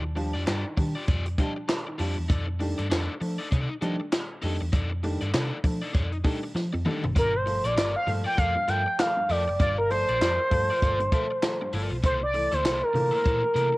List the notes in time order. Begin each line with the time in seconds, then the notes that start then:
Already playing: D#2
0.03 muted overdriven electric guitar stroke
0.15 F3 G3 D4, muted overdriven electric guitar stroke, open hi-hat
0.34 F2 G3 D4 F4 G4 D5
0.46 G2 G3 D4 F4 G4 D5, snare, clap, closed hi-hat
0.66 D#3
0.77 D#3 G3 D4, muted overdriven electric guitar stroke, kick, open hi-hat
0.95 F4 G4 D5
1.07 F2 F4 G4 D5, kick, closed hi-hat
1.26 muted overdriven electric guitar stroke, closed hi-hat
1.38 F3 G3 D4 F4 G4 D#5, kick, closed hi-hat
1.56 muted overdriven electric guitar stroke
1.68 G3 D4, muted overdriven electric guitar stroke, snare, clap, closed hi-hat
1.87 D#3, muted overdriven electric guitar stroke
1.98 F2 F3 G3 D4 F4 G4 D5, open hi-hat
2.17 E2, muted overdriven electric guitar stroke
2.28 F2 D#4 A4 D5, kick, closed hi-hat
2.47 muted overdriven electric guitar stroke
2.59 D#3 G3 A3 D4, muted overdriven electric guitar stroke, open hi-hat
2.78 G2 A3 D4 D#4 A4 D5, closed hi-hat
2.90 F2 A3 D4 D#4 A4 D5, snare, clap, closed hi-hat
3.20 F3 A3 D4, muted overdriven electric guitar stroke, open hi-hat
3.38 D#4 A4 D5
3.51 C3 D#4 A4 D5, kick, closed hi-hat
3.69 muted overdriven electric guitar stroke
3.81 D#3 F3 G3 A3 D4 D#4 A4 D#5, closed hi-hat
4.00 muted overdriven electric guitar stroke
4.12 A3 D4, muted overdriven electric guitar stroke, snare, clap, closed hi-hat
4.42 F2 D#3 G3 A3 D4 D#4 A4 D#5, open hi-hat
4.61 E2, muted overdriven electric guitar stroke
4.72 F2 D#4 A4 D5, kick, closed hi-hat
4.91 muted overdriven electric guitar stroke
5.03 D#3 G3 A3 D4, muted overdriven electric guitar stroke, open hi-hat
5.21 G2 A3 D4 D#4 A4 D5, closed hi-hat
5.33 C3 A3 D4 D#4 A4 D5, snare, clap, closed hi-hat
5.64 F3 A3 D4, muted overdriven electric guitar stroke, kick, open hi-hat
5.82 D#4 A4 D5
5.93 F2 D#4 A4 D5, kick, closed hi-hat
6.12 muted overdriven electric guitar stroke, closed hi-hat
6.24 D#3 G3 A3 D4 D#4 A4 D#5, kick, open hi-hat
6.44 muted overdriven electric guitar stroke
6.54 F3 A3 D4, muted overdriven electric guitar stroke, snare
6.73 F2, muted overdriven electric guitar stroke, high tom
6.85 D#3 G3 A3 D4 D#4 A4 D5, mid tom
7.04 F#1, muted overdriven electric guitar stroke, floor tom
7.15 G1 G2 F4 A#4 D5, kick, closed hi-hat
7.34 C5, muted overdriven electric guitar stroke
7.46 F3 A3, muted overdriven electric guitar stroke, open hi-hat
7.64 A#1 F4 A#4 D5, closed hi-hat
7.76 G1 F4 A#4 D5, snare, clap, closed hi-hat
7.96 F5
8.07 G2 A#2 F3 A3, muted overdriven electric guitar stroke, open hi-hat
8.25 F4 A#4 D5 G5
8.37 F2 F3 A3 F4 A#4 D5 F5, kick, closed hi-hat
8.56 G2, muted overdriven electric guitar stroke
8.68 G2 F3 A3 F4 A#4 E5 G5, closed hi-hat
8.86 muted overdriven electric guitar stroke
8.99 F3 A3 F5, muted overdriven electric guitar stroke, snare, clap, closed hi-hat
9.17 G2
9.29 F2 F3 A3 F4 A#4 D5 E5, open hi-hat
9.48 F#1, muted overdriven electric guitar stroke
9.60 G1 G2 F4 A#4 D5, kick, closed hi-hat
9.78 A#4, muted overdriven electric guitar stroke
9.90 F3 A3 C5, muted overdriven electric guitar stroke, open hi-hat
10.09 A#1 F4 A#4 D5, closed hi-hat
10.21 F2 F4 A#4 D5, snare, clap, closed hi-hat
10.50 G2 A#2 F3 A3, muted overdriven electric guitar stroke, kick, open hi-hat
10.70 F4 A#4 D5
10.81 G1 F3 A3 F4 A#4 D5, kick, closed hi-hat
10.99 G2, muted overdriven electric guitar stroke, closed hi-hat
11.12 F3 A3 F4 A#4 E5, kick, closed hi-hat
11.30 muted overdriven electric guitar stroke
11.42 F3 A3, muted overdriven electric guitar stroke, snare, clap, closed hi-hat
11.61 G2, muted overdriven electric guitar stroke
11.73 G1 F3 A3 F4 A#4 D5, open hi-hat
11.91 B1, muted overdriven electric guitar stroke
12.03 C2 A#3 E4 A4 C5, kick, closed hi-hat
12.22 D5, muted overdriven electric guitar stroke
12.34 E3 A3, muted overdriven electric guitar stroke, open hi-hat
12.52 D2 A#3 E4 A4 C5, closed hi-hat
12.63 C2 A#3 E4 A4, snare, clap, closed hi-hat
12.83 A#4
12.93 A#2 C3 D3 E3 A3, muted overdriven electric guitar stroke, open hi-hat
13.11 A#3 E4 A4 A#4
13.24 A#2 E3 A3 A#3 E4 A4, kick, closed hi-hat
13.43 muted overdriven electric guitar stroke
13.54 C3 E3 A3 A#3 E4 A#4, closed hi-hat
13.72 muted overdriven electric guitar stroke